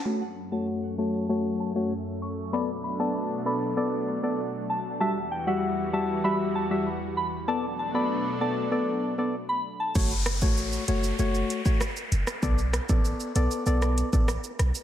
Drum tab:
CC |----------------|----------------|----------------|----------------|
HH |----------------|----------------|----------------|----------------|
SH |----------------|----------------|----------------|----------------|
SD |----------------|----------------|----------------|----------------|
BD |----------------|----------------|----------------|----------------|

CC |x---------------|----------------|
HH |--x---x---x---x-|--x---x---x---x-|
SH |xxxxxxxxxxxxxxxx|xxxxxxxxxxxxxxxx|
SD |--r---------r--r|--r------r--r-r-|
BD |o--o-------o----|o--o-------o----|